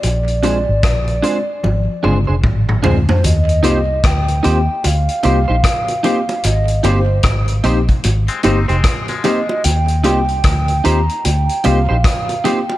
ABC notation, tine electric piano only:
X:1
M:4/4
L:1/8
Q:"Swing 16ths" 1/4=75
K:Eb
V:1 name="Tine electric piano"
z [A,CDF] z [A,CDF] z [A,CDF] z [A,CDF] | z [B,CFG] z [B,CFG] z [B,CFG] z [B,CFG] | z [B,CEG] z [B,CEG] z [B,CEG] z [B,CEG] | z [B,CFG] z [B,CFG] z [B,CFG] z [B,CFG] |]